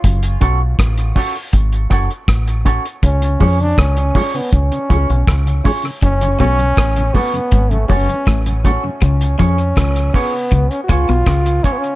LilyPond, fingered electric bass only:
\new Staff \with { instrumentName = "Fingered electric bass" } { \clef bass \time 4/4 \key fis \minor \tempo 4 = 80 fis,,8 b,,8 a,,8 r8 gis,,8 fis,,16 r16 a,,8. r16 | cis,8 eis,8 cis,8 r8 cis,16 r16 cis,16 b,,16 cis,8 r8 | fis,,8 b,,8 a,,8 r8 gis,,8 fis,,16 r16 a,,8. r16 | cis,8 eis,8 cis,8 r8 cis,16 r16 cis,16 b,,16 cis,8 r8 | }